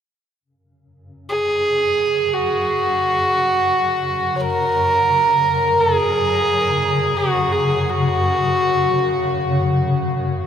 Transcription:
0.40 ambient pad F#2 C#3
1.29 violin G#4
2.34 violin F#4
4.35 violin C#5
4.40 violin A#4
5.79 violin G#4
7.16 violin F#4
7.52 violin G#4
7.89 violin F#4

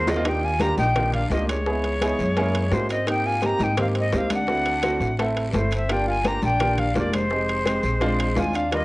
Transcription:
Already playing: upright bass D#2, flute C5
0.07 tenor saxophone C4, flute D#5, cowbell, low bongo, low conga, low timbale, low agogo, short guiro
0.16 grand piano A#3 C4 D#4 F4
0.24 grand piano A#3 D4 F4 G4, tenor saxophone D#4, flute G5, high bongo, high conga, high timbale, long guiro
0.43 tenor saxophone F4, flute G#5, high conga
0.60 grand piano A#3 D4 F4 G4, tenor saxophone G4, flute A#5, high bongo, high conga, high timbale, low timbale, short guiro
0.77 upright bass A#1, tenor saxophone D#4, flute G5, high conga, short guiro
0.95 grand piano A#3 D4 F4 G4, high bongo, high conga, low conga, high timbale, long guiro
1.13 tenor saxophone D4, flute F5, high conga, low conga, high timbale
1.30 upright bass C#2, tenor saxophone A#3, grand piano A#3 D4 F4 G4, flute D#5, high bongo, low bongo, high conga, low timbale, short guiro
1.47 tenor saxophone G#3, flute C#5, high conga, high timbale, short guiro
1.66 grand piano B3 D#4 E4 G#4, high bongo, long guiro
1.84 high bongo, high conga, high timbale
2.01 grand piano B3 D#4 E4 G#4, high bongo, high conga, high timbale, low timbale, short guiro
2.19 upright bass F#2, high bongo, high conga, short guiro
2.37 grand piano A#3 C#4 E4 G#4, high bongo, high conga, high timbale, long guiro
2.54 high bongo, high conga, high timbale
2.71 upright bass G#2, tenor saxophone G#3, grand piano A#3 C#4 E4 F#4, flute C5, high bongo, low bongo, high conga, low timbale, short guiro
2.90 tenor saxophone C4, flute D#5, high conga, high timbale, short guiro
3.07 grand piano A#3 C4 D#4 G4, tenor saxophone D#4, flute G5, high bongo, high conga, high timbale, long guiro
3.26 tenor saxophone F4, flute G#5, high conga
3.42 grand piano A#3 C4 D#4 G4, tenor saxophone G4, high bongo, high conga, high timbale, low timbale, short guiro
3.46 flute A#5
3.59 upright bass G#2, tenor saxophone D#4, high conga, short guiro
3.63 flute G5
3.77 grand piano A#3 C4 D#4 G4, tenor saxophone C4, high bongo, high conga, low conga, high timbale, long guiro
3.82 flute F5
3.94 tenor saxophone C4, high conga, high timbale
4.00 flute D#5
4.12 upright bass D2, grand piano A#3 C4 D#4 G4, tenor saxophone C4, high bongo, low bongo, high conga, low timbale, short guiro
4.18 flute F5
4.30 tenor saxophone D4, high conga, high timbale, short guiro
4.34 flute F#5
4.47 grand piano A3 C4 E4 F#4, high bongo, high conga, long guiro
4.65 high bongo, high conga, high timbale
4.82 grand piano A3 C4 E4 F#4, high bongo, high conga, high timbale, low timbale, short guiro
5.00 upright bass A1, high bongo, high conga, short guiro
5.17 grand piano A3 C4 E4 A4, high bongo, high conga, high timbale, long guiro
5.36 high bongo, high conga, high timbale
5.49 tenor saxophone G3, flute B4
5.53 upright bass G1, grand piano A3 C4 E4 A4, tenor saxophone A3, flute C5, high bongo, low bongo, high conga, low timbale, short guiro
5.71 tenor saxophone C4, high timbale, short guiro
5.76 flute E5
5.89 grand piano A#3 D4 F4 G4, tenor saxophone D4, flute G5, high bongo, high conga, high timbale, long guiro
6.07 tenor saxophone F4, flute G#5, high conga
6.24 grand piano A#3 D4 F4 G4, tenor saxophone G4, flute A#5, high bongo, high conga, high timbale, low timbale, short guiro
6.42 upright bass A#1, tenor saxophone D4, flute G5, high conga, short guiro
6.60 grand piano A#3 D4 F4 G4, high bongo, high conga, low conga, high timbale, long guiro
6.78 tenor saxophone D4, flute F5, high conga, low conga, high timbale
6.95 upright bass F1, grand piano A#3 D4 F4 G4, tenor saxophone A#3, flute D5, high bongo, low bongo, high conga, low timbale, short guiro
7.13 tenor saxophone G#3, flute C5, high conga, high timbale, short guiro
7.30 grand piano G#3 C4 D#4 G4, high bongo, long guiro
7.49 high bongo, high conga, high timbale
7.65 grand piano G#3 C4 D#4 G4, high bongo, high conga, high timbale, low timbale, short guiro
7.83 upright bass A#1, high bongo, high conga, short guiro
8.01 grand piano G#3 C4 D4 F4, high bongo, high conga, high timbale, long guiro
8.19 high bongo, high conga, high timbale
8.36 upright bass D#2, grand piano G#3 C4 D4 F4, tenor saxophone F4, high bongo, low bongo, high conga, low timbale, short guiro
8.40 flute G#5
8.53 tenor saxophone D4, flute F5, high timbale, short guiro
8.71 grand piano G3 A#3 D4 F4, tenor saxophone A#3, flute D#5, high bongo, high timbale, long guiro

